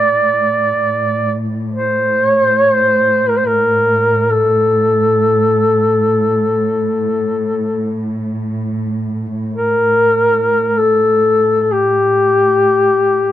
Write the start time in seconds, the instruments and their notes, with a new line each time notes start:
Already playing: cello section A2, duduk D5
1.74 duduk C5
2.28 duduk C#5
2.42 duduk C5
2.58 duduk C#5
2.72 duduk C5
3.29 duduk A#4
3.37 duduk C5
3.46 duduk A#4
4.32 duduk A4
9.53 duduk A#4
10.67 duduk A#4
10.78 duduk A4
11.61 duduk A4
11.72 duduk G4